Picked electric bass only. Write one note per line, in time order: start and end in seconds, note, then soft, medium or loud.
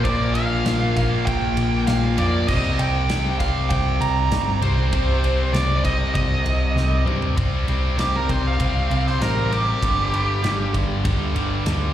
0.05 0.62 A#1 medium
0.65 0.93 A#1 medium
0.96 1.24 A#1 medium
1.27 1.55 A#1 loud
1.56 1.85 A#1 medium
1.87 2.15 A#1 medium
2.18 2.50 F2 medium
2.49 2.77 C2 loud
2.79 3.07 C2 medium
3.10 3.67 C2 medium
3.71 3.99 C2 loud
4.00 4.29 C2 medium
4.31 4.59 G1 medium
4.62 4.90 C2 medium
4.93 5.50 C2 loud
5.53 5.82 C2 medium
5.84 6.12 C2 medium
6.15 6.43 C2 loud
6.46 6.74 C2 medium
6.76 7.04 C2 medium
7.06 7.34 G2 medium
7.38 7.64 C2 medium
7.68 7.94 C2 medium
7.99 8.25 C2 medium
8.29 8.56 C2 medium
8.60 8.86 C2 medium
8.90 9.17 C2 medium
9.21 9.73 A1 medium
9.83 10.35 G1 medium
10.44 10.70 G1 medium
10.74 11.01 G1 medium
11.05 11.31 D2 medium
11.35 11.61 G1 medium
11.67 11.93 D2 medium